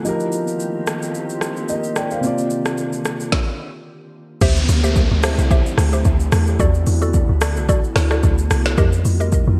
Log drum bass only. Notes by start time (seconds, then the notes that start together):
4.41 D2
4.69 D2
5.11 D2
5.38 C2
5.78 D2
6.05 D2
6.32 E2
6.60 E2
6.87 E2
7.29 D2
7.56 C2
7.96 D2
8.23 D2
8.51 C2
8.78 F2
9.05 F2
9.47 F2